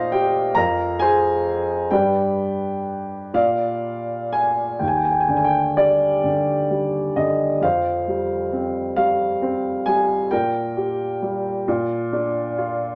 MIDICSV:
0, 0, Header, 1, 2, 480
1, 0, Start_track
1, 0, Tempo, 894188
1, 1021, Time_signature, 6, 3, 24, 8
1, 1021, Tempo, 941915
1, 1501, Tempo, 980392
1, 2461, Tempo, 953895
1, 3421, Tempo, 903614
1, 6735, End_track
2, 0, Start_track
2, 0, Title_t, "Upright piano"
2, 0, Program_c, 0, 0
2, 0, Control_c, 0, 64, 127
2, 0, Note_on_c, 0, 46, 59
2, 0, Note_on_c, 0, 63, 60
2, 0, Note_on_c, 0, 65, 62
2, 0, Note_on_c, 0, 70, 57
2, 0, Note_on_c, 0, 72, 63
2, 0, Note_on_c, 0, 75, 86
2, 0, Note_on_c, 0, 77, 85
2, 55, Note_off_c, 0, 65, 0
2, 64, Note_on_c, 0, 79, 81
2, 71, Note_off_c, 0, 77, 0
2, 72, Note_on_c, 0, 67, 63
2, 278, Note_off_c, 0, 46, 0
2, 283, Note_off_c, 0, 79, 0
2, 287, Note_off_c, 0, 67, 0
2, 294, Note_on_c, 0, 82, 87
2, 301, Note_on_c, 0, 41, 65
2, 305, Note_off_c, 0, 70, 0
2, 305, Control_c, 0, 64, 0
2, 305, Note_on_c, 0, 70, 63
2, 305, Note_on_c, 0, 77, 61
2, 306, Note_off_c, 0, 72, 0
2, 306, Note_off_c, 0, 75, 0
2, 310, Note_off_c, 0, 63, 0
2, 399, Control_c, 0, 64, 127
2, 522, Note_off_c, 0, 77, 0
2, 523, Note_off_c, 0, 70, 0
2, 534, Note_on_c, 0, 80, 86
2, 540, Note_off_c, 0, 82, 0
2, 542, Note_on_c, 0, 68, 57
2, 546, Note_on_c, 0, 72, 62
2, 999, Note_off_c, 0, 80, 0
2, 1002, Note_off_c, 0, 41, 0
2, 1003, Note_off_c, 0, 68, 0
2, 1005, Note_off_c, 0, 72, 0
2, 1023, Note_on_c, 0, 79, 72
2, 1027, Control_c, 0, 64, 0
2, 1027, Note_on_c, 0, 43, 58
2, 1034, Note_on_c, 0, 67, 51
2, 1035, Note_on_c, 0, 71, 49
2, 1035, Note_on_c, 0, 74, 48
2, 1122, Control_c, 0, 64, 127
2, 1722, Note_off_c, 0, 43, 0
2, 1741, Note_off_c, 0, 74, 0
2, 1742, Note_on_c, 0, 46, 54
2, 1745, Control_c, 0, 64, 0
2, 1745, Note_on_c, 0, 77, 76
2, 1748, Note_on_c, 0, 74, 55
2, 1840, Control_c, 0, 64, 127
2, 2202, Note_off_c, 0, 79, 0
2, 2208, Note_off_c, 0, 67, 0
2, 2208, Note_off_c, 0, 71, 0
2, 2226, Note_on_c, 0, 80, 75
2, 2238, Note_off_c, 0, 77, 0
2, 2442, Note_off_c, 0, 46, 0
2, 2445, Note_off_c, 0, 74, 0
2, 2447, Note_off_c, 0, 80, 0
2, 2456, Note_on_c, 0, 79, 55
2, 2461, Note_on_c, 0, 39, 41
2, 2468, Control_c, 0, 64, 0
2, 2497, Note_on_c, 0, 80, 57
2, 2499, Note_off_c, 0, 79, 0
2, 2541, Note_off_c, 0, 80, 0
2, 2541, Note_on_c, 0, 79, 53
2, 2551, Control_c, 0, 64, 127
2, 2584, Note_off_c, 0, 79, 0
2, 2584, Note_on_c, 0, 80, 56
2, 2620, Note_on_c, 0, 79, 54
2, 2626, Note_off_c, 0, 80, 0
2, 2662, Note_on_c, 0, 80, 62
2, 2664, Note_off_c, 0, 79, 0
2, 2702, Note_on_c, 0, 50, 36
2, 2703, Note_on_c, 0, 79, 56
2, 2706, Note_off_c, 0, 80, 0
2, 2744, Note_on_c, 0, 80, 63
2, 2747, Note_off_c, 0, 79, 0
2, 2783, Note_on_c, 0, 79, 71
2, 2788, Note_off_c, 0, 80, 0
2, 2944, Note_on_c, 0, 55, 38
2, 2946, Note_on_c, 0, 74, 75
2, 2947, Note_off_c, 0, 79, 0
2, 2950, Note_on_c, 0, 67, 42
2, 3175, Note_off_c, 0, 50, 0
2, 3182, Note_on_c, 0, 50, 40
2, 3411, Note_off_c, 0, 55, 0
2, 3418, Note_on_c, 0, 55, 39
2, 3644, Note_off_c, 0, 74, 0
2, 3646, Note_off_c, 0, 67, 0
2, 3653, Note_off_c, 0, 50, 0
2, 3660, Note_on_c, 0, 75, 63
2, 3661, Note_on_c, 0, 50, 41
2, 3884, Note_off_c, 0, 39, 0
2, 3889, Note_off_c, 0, 55, 0
2, 3896, Note_off_c, 0, 50, 0
2, 3899, Note_on_c, 0, 41, 47
2, 3906, Note_on_c, 0, 77, 78
2, 3910, Note_off_c, 0, 75, 0
2, 3913, Control_c, 0, 64, 0
2, 3915, Note_on_c, 0, 72, 51
2, 3992, Control_c, 0, 64, 127
2, 4146, Note_on_c, 0, 55, 41
2, 4384, Note_on_c, 0, 60, 45
2, 4603, Note_off_c, 0, 72, 0
2, 4609, Note_off_c, 0, 77, 0
2, 4615, Note_off_c, 0, 55, 0
2, 4617, Note_on_c, 0, 77, 76
2, 4623, Note_on_c, 0, 55, 47
2, 4851, Note_off_c, 0, 60, 0
2, 4859, Note_on_c, 0, 60, 50
2, 5091, Note_off_c, 0, 55, 0
2, 5092, Note_on_c, 0, 80, 78
2, 5099, Note_on_c, 0, 55, 49
2, 5108, Note_off_c, 0, 77, 0
2, 5309, Note_off_c, 0, 41, 0
2, 5315, Note_off_c, 0, 80, 0
2, 5321, Note_off_c, 0, 60, 0
2, 5329, Note_off_c, 0, 55, 0
2, 5331, Note_on_c, 0, 79, 76
2, 5335, Note_on_c, 0, 70, 56
2, 5338, Note_on_c, 0, 46, 52
2, 5341, Control_c, 0, 64, 0
2, 5419, Control_c, 0, 64, 127
2, 5575, Note_on_c, 0, 67, 44
2, 5816, Note_on_c, 0, 55, 47
2, 6032, Note_off_c, 0, 46, 0
2, 6038, Note_off_c, 0, 67, 0
2, 6046, Note_off_c, 0, 55, 0
2, 6059, Control_c, 0, 64, 0
2, 6059, Note_on_c, 0, 46, 70
2, 6141, Control_c, 0, 64, 127
2, 6297, Note_on_c, 0, 62, 53
2, 6538, Note_on_c, 0, 65, 53
2, 6735, Note_off_c, 0, 46, 0
2, 6735, Note_off_c, 0, 62, 0
2, 6735, Note_off_c, 0, 65, 0
2, 6735, Note_off_c, 0, 70, 0
2, 6735, Note_off_c, 0, 79, 0
2, 6735, End_track
0, 0, End_of_file